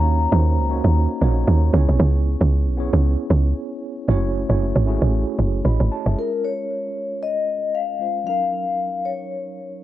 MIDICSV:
0, 0, Header, 1, 4, 480
1, 0, Start_track
1, 0, Key_signature, -5, "minor"
1, 0, Tempo, 521739
1, 1836, Time_signature, 4, 2, 24, 8
1, 9052, End_track
2, 0, Start_track
2, 0, Title_t, "Vibraphone"
2, 0, Program_c, 0, 11
2, 0, Note_on_c, 0, 82, 104
2, 1322, Note_off_c, 0, 82, 0
2, 5692, Note_on_c, 0, 70, 89
2, 5929, Note_on_c, 0, 73, 94
2, 5931, Note_off_c, 0, 70, 0
2, 6649, Note_on_c, 0, 75, 94
2, 6664, Note_off_c, 0, 73, 0
2, 7128, Note_on_c, 0, 77, 104
2, 7137, Note_off_c, 0, 75, 0
2, 7596, Note_off_c, 0, 77, 0
2, 7607, Note_on_c, 0, 77, 99
2, 8329, Note_on_c, 0, 73, 86
2, 8343, Note_off_c, 0, 77, 0
2, 9052, Note_off_c, 0, 73, 0
2, 9052, End_track
3, 0, Start_track
3, 0, Title_t, "Tine electric piano"
3, 0, Program_c, 1, 4
3, 0, Note_on_c, 1, 58, 100
3, 0, Note_on_c, 1, 61, 91
3, 0, Note_on_c, 1, 63, 90
3, 0, Note_on_c, 1, 66, 85
3, 0, Note_on_c, 1, 73, 104
3, 96, Control_c, 1, 64, 127
3, 210, Note_off_c, 1, 58, 0
3, 213, Note_off_c, 1, 61, 0
3, 216, Note_off_c, 1, 63, 0
3, 220, Note_off_c, 1, 66, 0
3, 222, Note_off_c, 1, 73, 0
3, 289, Note_on_c, 1, 58, 72
3, 294, Note_on_c, 1, 61, 65
3, 301, Note_on_c, 1, 63, 65
3, 307, Note_on_c, 1, 66, 62
3, 314, Note_on_c, 1, 72, 81
3, 573, Note_off_c, 1, 58, 0
3, 575, Note_off_c, 1, 61, 0
3, 579, Note_off_c, 1, 63, 0
3, 581, Note_off_c, 1, 66, 0
3, 585, Note_off_c, 1, 72, 0
3, 631, Note_on_c, 1, 58, 92
3, 638, Note_on_c, 1, 61, 80
3, 643, Note_on_c, 1, 63, 83
3, 650, Note_on_c, 1, 66, 83
3, 656, Note_on_c, 1, 73, 96
3, 1033, Note_off_c, 1, 58, 0
3, 1036, Note_off_c, 1, 61, 0
3, 1039, Note_off_c, 1, 63, 0
3, 1042, Note_off_c, 1, 66, 0
3, 1045, Note_off_c, 1, 73, 0
3, 1112, Note_on_c, 1, 58, 93
3, 1117, Note_on_c, 1, 61, 84
3, 1124, Note_on_c, 1, 63, 86
3, 1130, Note_on_c, 1, 66, 86
3, 1136, Note_on_c, 1, 73, 102
3, 1586, Note_off_c, 1, 61, 0
3, 1592, Note_on_c, 1, 59, 93
3, 1594, Note_off_c, 1, 58, 0
3, 1597, Note_on_c, 1, 61, 92
3, 1600, Note_off_c, 1, 63, 0
3, 1603, Note_off_c, 1, 66, 0
3, 1603, Note_on_c, 1, 64, 91
3, 1606, Note_off_c, 1, 73, 0
3, 1609, Control_c, 1, 64, 0
3, 1610, Note_on_c, 1, 68, 85
3, 1616, Note_on_c, 1, 73, 105
3, 1757, Control_c, 1, 64, 127
3, 2370, Note_off_c, 1, 59, 0
3, 2372, Note_off_c, 1, 61, 0
3, 2375, Note_off_c, 1, 64, 0
3, 2379, Note_off_c, 1, 68, 0
3, 2382, Note_off_c, 1, 73, 0
3, 2551, Note_on_c, 1, 59, 93
3, 2557, Note_on_c, 1, 61, 87
3, 2564, Note_on_c, 1, 64, 86
3, 2570, Note_on_c, 1, 68, 84
3, 2577, Note_on_c, 1, 73, 103
3, 3329, Note_off_c, 1, 59, 0
3, 3332, Note_off_c, 1, 61, 0
3, 3336, Note_off_c, 1, 64, 0
3, 3339, Note_off_c, 1, 68, 0
3, 3342, Note_off_c, 1, 73, 0
3, 3752, Note_on_c, 1, 57, 118
3, 3757, Note_on_c, 1, 61, 107
3, 3764, Note_on_c, 1, 64, 107
3, 3770, Control_c, 1, 64, 0
3, 3770, Note_on_c, 1, 66, 105
3, 3777, Note_on_c, 1, 73, 127
3, 3948, Control_c, 1, 64, 127
3, 4050, Note_off_c, 1, 57, 0
3, 4052, Note_off_c, 1, 61, 0
3, 4056, Note_off_c, 1, 64, 0
3, 4059, Note_off_c, 1, 66, 0
3, 4062, Note_off_c, 1, 73, 0
3, 4131, Note_on_c, 1, 57, 85
3, 4137, Note_on_c, 1, 61, 74
3, 4143, Note_on_c, 1, 64, 73
3, 4149, Note_on_c, 1, 66, 76
3, 4155, Note_on_c, 1, 73, 93
3, 4414, Note_off_c, 1, 57, 0
3, 4416, Note_off_c, 1, 61, 0
3, 4419, Note_off_c, 1, 64, 0
3, 4423, Note_off_c, 1, 66, 0
3, 4425, Note_off_c, 1, 73, 0
3, 4471, Note_on_c, 1, 57, 93
3, 4477, Note_on_c, 1, 61, 82
3, 4482, Note_on_c, 1, 64, 87
3, 4490, Note_on_c, 1, 66, 84
3, 4495, Note_on_c, 1, 68, 100
3, 4873, Note_off_c, 1, 57, 0
3, 4876, Note_off_c, 1, 61, 0
3, 4879, Note_off_c, 1, 64, 0
3, 4882, Note_off_c, 1, 66, 0
3, 4885, Note_off_c, 1, 68, 0
3, 5204, Note_on_c, 1, 83, 68
3, 5210, Note_on_c, 1, 75, 60
3, 5428, Note_off_c, 1, 83, 0
3, 5431, Note_off_c, 1, 75, 0
3, 5443, Note_on_c, 1, 81, 74
3, 5450, Note_on_c, 1, 73, 59
3, 5572, Note_off_c, 1, 81, 0
3, 5576, Note_off_c, 1, 73, 0
3, 5585, Note_on_c, 1, 76, 71
3, 5590, Note_on_c, 1, 68, 59
3, 5660, Note_on_c, 1, 56, 62
3, 5677, Note_on_c, 1, 61, 54
3, 5686, Control_c, 1, 64, 0
3, 5695, Note_on_c, 1, 65, 56
3, 5711, Note_on_c, 1, 70, 68
3, 5808, Note_off_c, 1, 76, 0
3, 5811, Note_off_c, 1, 68, 0
3, 5860, Control_c, 1, 64, 127
3, 7314, Note_off_c, 1, 56, 0
3, 7323, Note_off_c, 1, 61, 0
3, 7332, Note_off_c, 1, 65, 0
3, 7340, Note_off_c, 1, 70, 0
3, 7352, Note_on_c, 1, 56, 48
3, 7360, Note_on_c, 1, 61, 41
3, 7369, Note_on_c, 1, 65, 42
3, 7376, Note_on_c, 1, 72, 51
3, 7581, Note_on_c, 1, 54, 59
3, 7585, Note_off_c, 1, 61, 0
3, 7594, Note_off_c, 1, 56, 0
3, 7597, Note_on_c, 1, 61, 54
3, 7603, Note_off_c, 1, 65, 0
3, 7606, Note_off_c, 1, 72, 0
3, 7609, Control_c, 1, 64, 0
3, 7614, Note_on_c, 1, 63, 56
3, 7630, Note_on_c, 1, 70, 67
3, 7773, Control_c, 1, 64, 127
3, 9052, Note_off_c, 1, 54, 0
3, 9052, Note_off_c, 1, 61, 0
3, 9052, Note_off_c, 1, 63, 0
3, 9052, Note_off_c, 1, 70, 0
3, 9052, End_track
4, 0, Start_track
4, 0, Title_t, "Log drum bass"
4, 0, Program_c, 2, 39
4, 0, Note_on_c, 2, 39, 110
4, 250, Note_off_c, 2, 39, 0
4, 296, Note_on_c, 2, 39, 107
4, 536, Note_on_c, 2, 37, 96
4, 550, Note_off_c, 2, 39, 0
4, 748, Note_off_c, 2, 37, 0
4, 775, Note_on_c, 2, 39, 90
4, 987, Note_off_c, 2, 39, 0
4, 1119, Note_on_c, 2, 34, 91
4, 1329, Note_off_c, 2, 34, 0
4, 1358, Note_on_c, 2, 39, 94
4, 1569, Note_off_c, 2, 39, 0
4, 1597, Note_on_c, 2, 37, 108
4, 1719, Note_off_c, 2, 37, 0
4, 1736, Note_on_c, 2, 35, 88
4, 1825, Note_off_c, 2, 35, 0
4, 1837, Note_on_c, 2, 37, 114
4, 2171, Note_off_c, 2, 37, 0
4, 2216, Note_on_c, 2, 37, 98
4, 2457, Note_on_c, 2, 35, 97
4, 2471, Note_off_c, 2, 37, 0
4, 2668, Note_off_c, 2, 35, 0
4, 2698, Note_on_c, 2, 37, 94
4, 2908, Note_off_c, 2, 37, 0
4, 3038, Note_on_c, 2, 37, 107
4, 3249, Note_off_c, 2, 37, 0
4, 3757, Note_on_c, 2, 30, 100
4, 4091, Note_off_c, 2, 30, 0
4, 4136, Note_on_c, 2, 30, 100
4, 4348, Note_off_c, 2, 30, 0
4, 4376, Note_on_c, 2, 32, 105
4, 4587, Note_off_c, 2, 32, 0
4, 4616, Note_on_c, 2, 33, 92
4, 4827, Note_off_c, 2, 33, 0
4, 4956, Note_on_c, 2, 30, 89
4, 5168, Note_off_c, 2, 30, 0
4, 5197, Note_on_c, 2, 33, 91
4, 5319, Note_off_c, 2, 33, 0
4, 5337, Note_on_c, 2, 32, 90
4, 5425, Note_off_c, 2, 32, 0
4, 5576, Note_on_c, 2, 30, 94
4, 5665, Note_off_c, 2, 30, 0
4, 9052, End_track
0, 0, End_of_file